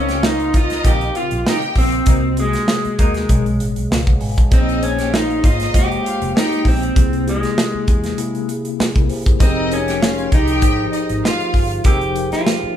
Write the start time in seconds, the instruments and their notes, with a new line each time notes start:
Already playing: fingered electric bass C#2, tine electric piano C#3 C4 A#4 C5 D#5 F5, clean electric guitar C#4
0.09 violin section G4 G5, snare, closed hi-hat
0.23 clean electric guitar D#4, violin section F4 F5, snare
0.40 closed hi-hat
0.54 fingered electric bass C2, violin section D#4 D#5, clean electric guitar F4, kick, closed hi-hat
0.70 snare, closed hi-hat
0.84 fingered electric bass A#1, tine electric piano C#3 C4 A#4 D#5 F5, clean electric guitar G4, kick, closed hi-hat
1.01 closed hi-hat
1.15 violin section F4 F5, clean electric guitar F4, closed hi-hat
1.31 fingered electric bass A#1, closed hi-hat
1.45 clean electric guitar D#4, violin section G4 G5, snare
1.62 closed hi-hat
1.75 fingered electric bass A#1, clean electric guitar C4, kick, open hi-hat
1.92 closed hi-hat
2.06 fingered electric bass C2, tine electric piano C3 A#3 F#4 D#5, horn section D#3 A#3 C4 D#4, kick, closed hi-hat
2.37 tine electric piano C3 A#3 F#4 D#5, clean electric guitar G#3, closed hi-hat
2.53 snare, closed hi-hat
2.68 snare
2.85 muted fingered electric bass stroke, closed hi-hat
2.99 fingered electric bass D#2, horn section D#3 A#3 D#4, kick, closed hi-hat
3.14 snare, closed hi-hat
3.29 fingered electric bass B1, tine electric piano B2 G#3 G#4 C#5 D#5, kick, closed hi-hat
3.46 fingered electric bass B1, closed hi-hat
3.60 fingered electric bass A1, closed hi-hat
3.76 fingered electric bass B1, closed hi-hat
3.91 fingered electric bass C#2, tine electric piano B4 F5, snare
4.07 tine electric piano C#5 F#5, kick, closed hi-hat
4.21 fingered electric bass G#1, tine electric piano D#5 G#5, open hi-hat
4.38 tine electric piano D#5, kick, closed hi-hat
4.51 fingered electric bass A#1, tine electric piano A#3 G#4 C5 C#5 D#5, clean electric guitar C4, violin section D#4 D#5, kick, closed hi-hat
4.69 closed hi-hat
4.82 tine electric piano A#3 G#4 C5 C#5 D#5, clean electric guitar C#4, closed hi-hat
4.98 violin section G4 G5, snare, closed hi-hat
5.13 clean electric guitar D#4, violin section F4 F5, snare
5.30 closed hi-hat
5.43 fingered electric bass G#1, violin section D#4 D#5, clean electric guitar F4, kick, closed hi-hat
5.60 snare, closed hi-hat
5.73 fingered electric bass F1, tine electric piano G#3 A#3 C5 C#5 D#5, clean electric guitar G4, kick, closed hi-hat
5.92 closed hi-hat
6.04 violin section F4 F5, closed hi-hat
6.22 fingered electric bass F1, closed hi-hat
6.35 clean electric guitar D#4, violin section G4 G5, snare
6.52 closed hi-hat
6.65 fingered electric bass A#1, clean electric guitar C4, kick, open hi-hat
6.83 closed hi-hat
6.95 fingered electric bass C2, tine electric piano C3 A#3 E4 G#4, kick, closed hi-hat
7.13 closed hi-hat
7.26 tine electric piano C3 A#3 E4 G4, clean electric guitar G#3, closed hi-hat
7.43 snare, closed hi-hat
7.58 snare
7.75 muted fingered electric bass stroke
7.88 fingered electric bass E2, kick, closed hi-hat
8.04 snare, closed hi-hat
8.17 tine electric piano C3 A#3 E4 G#4, closed hi-hat
8.35 closed hi-hat
8.49 closed hi-hat
8.65 closed hi-hat
8.79 tine electric piano G#4, muted fingered electric bass stroke, snare
8.95 fingered electric bass C2, tine electric piano E4 A#4, kick, closed hi-hat
9.09 tine electric piano G4 C5, open hi-hat
9.26 fingered electric bass G1, tine electric piano G#4, kick, closed hi-hat
9.39 fingered electric bass F1, tine electric piano F3 D#4 G4 G#4 A#4, clean electric guitar C4, violin section D#4 D#5, kick, closed hi-hat
9.70 tine electric piano F3 D#4 G4 G#4 A#4, clean electric guitar C#4, closed hi-hat
9.88 violin section G4 G5, snare, closed hi-hat
10.02 violin section F4 F5, snare
10.18 closed hi-hat
10.32 fingered electric bass C2, clean electric guitar D#4, violin section G4 G5, kick, closed hi-hat
10.48 closed hi-hat
10.61 fingered electric bass G#1, tine electric piano F3 D#4 G4 G#4 C5, kick, closed hi-hat
10.93 violin section D#4 D#5, closed hi-hat
11.09 fingered electric bass G#1, closed hi-hat
11.24 violin section F4 F5, clean electric guitar F4, snare
11.40 closed hi-hat
11.54 fingered electric bass G1, kick, open hi-hat
11.71 closed hi-hat
11.84 fingered electric bass F1, horn section D#3 A#3 C4 D#4, tine electric piano F3 D#4 G4 G#4 C5, clean electric guitar G4, kick, closed hi-hat
12.01 closed hi-hat
12.15 tine electric piano F3 D#4 G4 G#4 A#4, closed hi-hat
12.32 clean electric guitar F4, snare, closed hi-hat
12.47 snare
12.63 muted fingered electric bass stroke